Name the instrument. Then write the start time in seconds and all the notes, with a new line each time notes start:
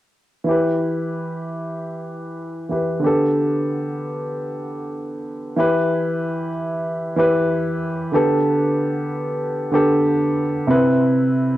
grand piano
0.44 E3 E4
0.49 G4 B4
2.69 E3 E4 G4 B4
2.99 D3 B3
3.04 G4 A4
5.56 E3 E4 G4 B4
7.16 E3 E4 G4 B4
8.12 D3 B3 G4 A4
9.71 D3 B3 G4 A4
10.67 C3 C4 E4 B4